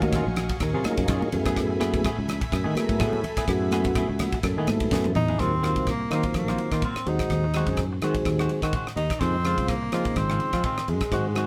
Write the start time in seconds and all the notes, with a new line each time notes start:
Already playing: D#2 F#3 C#4 D#4 F#4 A#4 D#5 F5 G#5 C#6
0.02 muted clean electric guitar stroke, kick, ride, high conga
0.13 F#3 C#4 F4 G#4, kick, cross-stick, ride
0.27 A#1, muted clean electric guitar stroke
0.36 cross-stick, ride, low conga
0.49 muted clean electric guitar stroke, kick, ride
0.60 D#2 A#4, muted clean electric guitar stroke, kick, cross-stick, ride
0.74 C3 F#3 C#4 F4 G#4
0.84 F#3 C#4 D#4 F4 G#4, muted clean electric guitar stroke, cross-stick, ride, high conga
0.97 F#2, kick, ride
1.08 F#2 F#3 C#4 F4 G#4, kick, cross-stick, ride
1.22 muted clean electric guitar stroke, high conga
1.32 F#2 F#3 A3 B3 E4 G#4 E5 G#5 B5, muted clean electric guitar stroke, ride, low conga
1.46 B3 E4 G#4, kick, cross-stick, ride
1.56 kick, cross-stick, ride
1.70 muted clean electric guitar stroke
1.80 A3 B3 E4 G#4, cross-stick, ride, high conga
1.94 muted clean electric guitar stroke, kick, ride, high conga
2.04 A3 B3 E4 G#4, kick, cross-stick, ride
2.18 C#2, muted clean electric guitar stroke
2.28 cross-stick, ride, low conga
2.41 muted clean electric guitar stroke, kick, ride
2.52 F#2, muted clean electric guitar stroke, kick, cross-stick, ride
2.64 D#3 A3 B3 E4 G#4
2.75 F#3 A3 B3 E4 G#4 A#4, muted clean electric guitar stroke, cross-stick, ride, high conga
2.89 A2, kick, ride
2.99 A2 A3 B3 E4 G#4 A4, kick, cross-stick, ride
3.13 muted clean electric guitar stroke, high conga
3.24 muted clean electric guitar stroke, ride, low conga
3.37 B3 E4 G#4, kick, cross-stick, ride
3.48 F#2 F#3 A3 B3 E4 F#4 G#4, kick, cross-stick, ride
3.62 muted clean electric guitar stroke
3.71 A3 B3 E4 F#4 G#4, cross-stick, ride, high conga
3.84 muted clean electric guitar stroke, kick, ride, high conga
3.95 A3 B3 E4 G#4, kick, cross-stick, ride
4.09 C#2, muted clean electric guitar stroke
4.19 cross-stick, ride, high conga, low conga
4.32 muted clean electric guitar stroke, kick, ride
4.43 F#2 A4, muted clean electric guitar stroke, kick, cross-stick, ride
4.57 D#3 A3 B3 E4 G#4
4.67 G#2 F#3 A3 B3 E4 A4, muted clean electric guitar stroke, cross-stick, ride, high conga
4.80 kick, ride
4.91 F#2 A3 B3 E4 G#4, kick, snare, low conga
5.04 high tom, high conga
5.15 E2 D#4, muted clean electric guitar stroke, mid tom, low conga
5.28 B3 E4 G#4, floor tom
5.39 D#2 D#3 F#3 A#3 C4 F4, kick, cross-stick, ride
5.62 D#3 F#3 A#3 C4 F4, cross-stick, ride
5.76 C2, muted clean electric guitar stroke, kick, ride
5.87 A#3, kick, cross-stick, ride
6.00 muted clean electric guitar stroke
6.11 D#3 F#3 A#3 C4 F4, cross-stick, ride
6.23 muted clean electric guitar stroke, kick, ride
6.34 A#1 A#3, muted clean electric guitar stroke, kick, cross-stick, ride
6.48 F#3 A#3 C4 F4, cross-stick
6.58 muted clean electric guitar stroke, ride
6.72 D#3 A#3 C4 F4, kick, cross-stick, ride
6.82 F#3 A#3 C4 F4, kick, ride
6.96 muted fretless electric bass stroke, muted clean electric guitar stroke, cross-stick
7.06 D#2 D#3 F#3 G#3 C4 D#4 F#4, muted clean electric guitar stroke, ride
7.19 kick, cross-stick, ride
7.30 D#2, kick, cross-stick, ride
7.44 muted clean electric guitar stroke
7.54 D#3 F#3 G#3 C4 F#4 G#4, cross-stick, ride
7.67 F#2, muted clean electric guitar stroke, kick, ride
7.77 kick, cross-stick, ride
7.93 muted clean electric guitar stroke
8.02 D#3 F#3 G#3 C4 F#4 G#4, cross-stick, ride
8.15 muted clean electric guitar stroke, kick, ride
8.25 D#2, muted clean electric guitar stroke, kick, cross-stick, ride
8.39 D#3 G#3 C4 F#4, cross-stick
8.49 muted clean electric guitar stroke, ride
8.62 D#3 G#3 C4 F#4, kick, cross-stick, ride
8.73 D#3 G#3 C4 F#4, kick, ride
8.87 muted fretless electric bass stroke, muted clean electric guitar stroke, cross-stick
8.96 D#2 D#4, muted clean electric guitar stroke, ride
9.10 kick, cross-stick, ride
9.20 F2 C#3 D#3 F3 G#3 C4 D#4 F4, kick, cross-stick, ride
9.35 muted clean electric guitar stroke
9.44 C#3 D#3 F3 G#3 C4 F4, cross-stick, ride
9.58 C2, muted clean electric guitar stroke, kick, ride
9.68 A#3, kick, cross-stick, ride
9.83 muted clean electric guitar stroke
9.92 C#3 D#3 F3 G#3 C4 D#4 F4, cross-stick, ride
10.05 muted clean electric guitar stroke, kick, ride
10.16 G#1 C4, muted clean electric guitar stroke, kick, cross-stick, ride
10.30 D#3 G#3 C4 F4, cross-stick
10.40 ride
10.53 F3 G#3 C4 F4, kick, cross-stick, ride
10.64 D#3 G#3 C4 F4, kick, ride
10.78 muted clean electric guitar stroke, muted fretless electric bass stroke, cross-stick
10.88 F#2 G#3, muted clean electric guitar stroke, ride
11.01 kick, cross-stick, ride
11.11 G#2 D#3 F#3 G#3 C4 F#4, kick, cross-stick, ride
11.26 muted clean electric guitar stroke
11.34 D#3 F#3 G#3 C4 F#4, cross-stick, ride
11.38 F#4